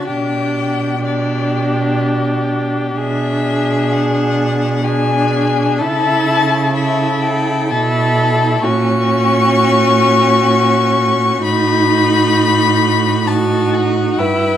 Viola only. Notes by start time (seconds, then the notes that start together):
0.08 D4
1.05 D4
2.98 D4
4.87 D4
5.81 E4
6.75 E4
7.70 E4
8.64 C#4
11.44 D#4
13.26 D#4
14.18 E4